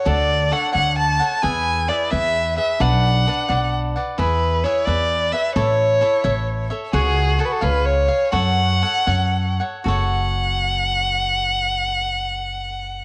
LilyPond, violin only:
\new Staff \with { instrumentName = "Violin" } { \time 6/8 \key fis \minor \tempo 4. = 87 d''4 fis''8 fis''8 a''4 | gis''4 d''8 e''4 e''8 | fis''2 r4 | b'4 cis''8 d''4 e''8 |
cis''2~ cis''8 r8 | gis'4 a'32 b'32 a'16 b'8 cis''4 | fis''2~ fis''8 r8 | fis''2.~ |
fis''2. | }